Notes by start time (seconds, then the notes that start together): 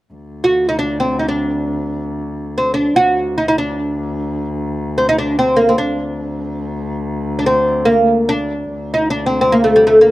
0.14 D2
0.44 F#4
0.69 D#4
0.79 D4
1.00 C4
1.19 D#4
1.28 D4
2.58 C4
2.74 D4
2.96 F#4
3.00 D2
3.38 D#4
3.48 D#4
3.58 D4
4.98 C4
5.09 D#4
5.18 D4
5.39 C4
5.56 A#3
5.69 C4
5.78 D4
5.87 D2
7.39 D4
7.46 C4
7.85 A#3
8.29 D4
8.73 D2
8.94 D#4
9.10 D4
9.26 C4
9.41 C4
9.52 A#3
9.64 A3
9.76 G3
9.87 A3
10.01 A#3